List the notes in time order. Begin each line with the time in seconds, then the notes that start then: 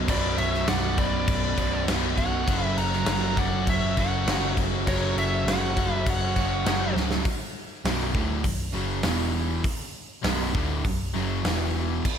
0.05 B0 B1 F#2, kick, crash
0.10 B2 B4 D5
0.38 B0 C#5 E5, crash
0.54 snare
0.67 B0 D5 F#5, snare, crash
0.96 B0 B1 F#2 B2 B4 D5, kick, crash
1.28 B0, kick, crash
1.57 B0 B1 F#2 B2, kick, crash
1.87 B0 B1 F#2 B2, snare, crash
2.15 B0 C#5 F#5, kick, crash
2.47 F#1 F#2 C#3 F#3, kick, crash
2.59 B4
2.65 E5
2.77 F#1 F#5 A#5, crash
2.93 snare
3.05 F#1 F#5 A#5, snare, crash
3.37 F#1 F#2 C#3 F#3 D5 F#5, kick, crash
3.67 F#1 C#5 E5, kick, crash
3.97 F#1 F#2 C#3 F#3 C#5 F#5, kick, crash
4.26 F#1 F#2 C#3 F#3, snare, crash
4.57 F#1, kick, crash
4.86 F#1 F#2 C#3 F#3 A#4 C#5, kick, crash
5.16 F#1 C#5 E5, crash
5.45 F#1 C#5 F#5, snare, crash
5.76 F#1 F#2 C#3 F#3, kick, crash
5.91 B4 E5
6.06 F#1 C#5 F#5, kick, crash
6.36 F#1 F#2 C#3 F#3, kick, crash
6.65 F#1 F#2 C#3, snare, crash
6.70 F#3
6.95 C#1, snare
7.11 snare
7.25 kick, open hi-hat
7.85 B0 B1 F#2, snare, open hi-hat
7.89 B2
8.15 D1 D2 A2 D3, kick
8.44 B0 B1 F#2, kick, open hi-hat
8.74 F#1 F#2 C#3 F#3
9.03 E1 E2 B2 E3, snare, open hi-hat
9.64 kick, open hi-hat
10.22 B0 B1 F#2 B2, snare, open hi-hat
10.53 D1 D2 A2 D3, kick
10.84 B0 B1 F#2, kick, open hi-hat
11.13 F#1 F#2 C#3 F#3
11.44 E1 E2 B2 E3, snare, open hi-hat
12.05 kick, crash